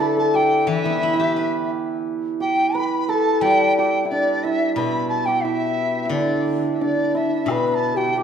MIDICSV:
0, 0, Header, 1, 6, 480
1, 0, Start_track
1, 0, Tempo, 687285
1, 478, Time_signature, 2, 2, 24, 8
1, 2877, Tempo, 666667
1, 4317, Tempo, 688073
1, 5791, End_track
2, 0, Start_track
2, 0, Title_t, "Dizi"
2, 0, Program_c, 0, 73
2, 0, Note_on_c, 0, 81, 79
2, 114, Note_off_c, 0, 81, 0
2, 124, Note_on_c, 0, 81, 82
2, 244, Note_on_c, 0, 79, 73
2, 254, Note_off_c, 0, 81, 0
2, 474, Note_on_c, 0, 76, 76
2, 484, Note_off_c, 0, 79, 0
2, 1198, Note_off_c, 0, 76, 0
2, 1679, Note_on_c, 0, 79, 75
2, 1918, Note_on_c, 0, 83, 81
2, 1928, Note_off_c, 0, 79, 0
2, 2157, Note_on_c, 0, 81, 74
2, 2167, Note_off_c, 0, 83, 0
2, 2383, Note_on_c, 0, 79, 87
2, 2393, Note_off_c, 0, 81, 0
2, 2627, Note_off_c, 0, 79, 0
2, 2631, Note_on_c, 0, 79, 74
2, 2852, Note_off_c, 0, 79, 0
2, 2856, Note_on_c, 0, 74, 70
2, 3099, Note_on_c, 0, 76, 67
2, 3110, Note_off_c, 0, 74, 0
2, 3330, Note_off_c, 0, 76, 0
2, 3334, Note_on_c, 0, 83, 77
2, 3567, Note_off_c, 0, 83, 0
2, 3571, Note_on_c, 0, 81, 71
2, 3692, Note_on_c, 0, 79, 67
2, 3702, Note_off_c, 0, 81, 0
2, 3814, Note_on_c, 0, 76, 75
2, 3825, Note_off_c, 0, 79, 0
2, 4266, Note_off_c, 0, 76, 0
2, 4266, Note_on_c, 0, 76, 47
2, 4301, Note_on_c, 0, 74, 66
2, 4311, Note_off_c, 0, 76, 0
2, 4584, Note_off_c, 0, 74, 0
2, 4740, Note_on_c, 0, 76, 42
2, 4799, Note_on_c, 0, 74, 63
2, 4809, Note_off_c, 0, 76, 0
2, 5044, Note_on_c, 0, 76, 67
2, 5054, Note_off_c, 0, 74, 0
2, 5280, Note_on_c, 0, 83, 79
2, 5291, Note_off_c, 0, 76, 0
2, 5399, Note_off_c, 0, 83, 0
2, 5399, Note_on_c, 0, 83, 52
2, 5447, Note_on_c, 0, 81, 76
2, 5458, Note_off_c, 0, 83, 0
2, 5602, Note_on_c, 0, 79, 72
2, 5613, Note_off_c, 0, 81, 0
2, 5761, Note_off_c, 0, 79, 0
2, 5791, End_track
3, 0, Start_track
3, 0, Title_t, "Xiao"
3, 0, Program_c, 1, 77
3, 4791, Note_on_c, 1, 62, 58
3, 5284, Note_on_c, 1, 71, 76
3, 5295, Note_off_c, 1, 62, 0
3, 5594, Note_on_c, 1, 67, 69
3, 5605, Note_off_c, 1, 71, 0
3, 5754, Note_off_c, 1, 67, 0
3, 5758, Note_on_c, 1, 67, 66
3, 5791, Note_off_c, 1, 67, 0
3, 5791, End_track
4, 0, Start_track
4, 0, Title_t, "Hammered dulcimer"
4, 0, Program_c, 2, 15
4, 0, Note_on_c, 2, 62, 57
4, 0, Note_on_c, 2, 64, 63
4, 0, Note_on_c, 2, 67, 70
4, 0, Note_on_c, 2, 71, 64
4, 0, Note_on_c, 2, 74, 69
4, 1, Note_on_c, 2, 69, 69
4, 113, Note_off_c, 2, 69, 0
4, 116, Note_on_c, 2, 69, 57
4, 235, Note_off_c, 2, 67, 0
4, 238, Note_on_c, 2, 67, 67
4, 474, Note_off_c, 2, 64, 0
4, 476, Note_on_c, 2, 64, 52
4, 526, Note_off_c, 2, 64, 0
4, 529, Note_on_c, 2, 64, 46
4, 581, Note_off_c, 2, 64, 0
4, 584, Note_on_c, 2, 64, 45
4, 629, Note_off_c, 2, 64, 0
4, 632, Note_on_c, 2, 64, 47
4, 685, Note_off_c, 2, 64, 0
4, 688, Note_on_c, 2, 64, 50
4, 739, Note_off_c, 2, 64, 0
4, 742, Note_on_c, 2, 64, 41
4, 793, Note_off_c, 2, 64, 0
4, 795, Note_on_c, 2, 64, 49
4, 847, Note_off_c, 2, 64, 0
4, 850, Note_on_c, 2, 64, 49
4, 962, Note_off_c, 2, 64, 0
4, 964, Note_on_c, 2, 64, 48
4, 1171, Note_off_c, 2, 62, 0
4, 1234, Note_off_c, 2, 74, 0
4, 1657, Note_off_c, 2, 71, 0
4, 1675, Note_off_c, 2, 67, 0
4, 1678, Note_on_c, 2, 67, 54
4, 1918, Note_on_c, 2, 71, 72
4, 2152, Note_off_c, 2, 69, 0
4, 2155, Note_on_c, 2, 69, 70
4, 2403, Note_off_c, 2, 67, 0
4, 2406, Note_on_c, 2, 67, 61
4, 2641, Note_off_c, 2, 67, 0
4, 2644, Note_on_c, 2, 67, 67
4, 2826, Note_off_c, 2, 64, 0
4, 2829, Note_on_c, 2, 64, 49
4, 2874, Note_on_c, 2, 62, 56
4, 3109, Note_off_c, 2, 64, 0
4, 3112, Note_on_c, 2, 64, 63
4, 3349, Note_off_c, 2, 71, 0
4, 3352, Note_on_c, 2, 71, 71
4, 3706, Note_off_c, 2, 67, 0
4, 3709, Note_on_c, 2, 67, 66
4, 3830, Note_off_c, 2, 64, 0
4, 3833, Note_on_c, 2, 64, 61
4, 4239, Note_off_c, 2, 69, 0
4, 4267, Note_off_c, 2, 64, 0
4, 4270, Note_on_c, 2, 64, 38
4, 4320, Note_off_c, 2, 62, 0
4, 4323, Note_on_c, 2, 62, 51
4, 4798, Note_off_c, 2, 62, 0
4, 4800, Note_on_c, 2, 62, 56
4, 5031, Note_off_c, 2, 64, 0
4, 5034, Note_on_c, 2, 64, 61
4, 5277, Note_off_c, 2, 71, 0
4, 5280, Note_on_c, 2, 71, 63
4, 5602, Note_off_c, 2, 67, 0
4, 5605, Note_on_c, 2, 67, 64
4, 5745, Note_off_c, 2, 67, 0
4, 5747, Note_on_c, 2, 67, 68
4, 5791, Note_off_c, 2, 62, 0
4, 5791, Note_off_c, 2, 64, 0
4, 5791, Note_off_c, 2, 67, 0
4, 5791, Note_off_c, 2, 71, 0
4, 5791, End_track
5, 0, Start_track
5, 0, Title_t, "Guzheng"
5, 0, Program_c, 3, 107
5, 0, Note_on_c, 3, 50, 44
5, 467, Note_on_c, 3, 52, 44
5, 596, Note_on_c, 3, 59, 38
5, 720, Note_on_c, 3, 64, 37
5, 835, Note_on_c, 3, 67, 35
5, 950, Note_off_c, 3, 50, 0
5, 953, Note_on_c, 3, 71, 33
5, 1562, Note_off_c, 3, 59, 0
5, 1684, Note_off_c, 3, 64, 0
5, 1801, Note_off_c, 3, 67, 0
5, 1916, Note_off_c, 3, 52, 0
5, 1918, Note_off_c, 3, 71, 0
5, 2383, Note_on_c, 3, 55, 43
5, 3337, Note_on_c, 3, 47, 47
5, 3830, Note_off_c, 3, 55, 0
5, 4299, Note_on_c, 3, 50, 46
5, 4307, Note_off_c, 3, 47, 0
5, 5252, Note_on_c, 3, 47, 42
5, 5750, Note_off_c, 3, 50, 0
5, 5791, Note_off_c, 3, 47, 0
5, 5791, End_track
6, 0, Start_track
6, 0, Title_t, "Drums"
6, 5269, Note_on_c, 9, 76, 55
6, 5338, Note_off_c, 9, 76, 0
6, 5791, End_track
0, 0, End_of_file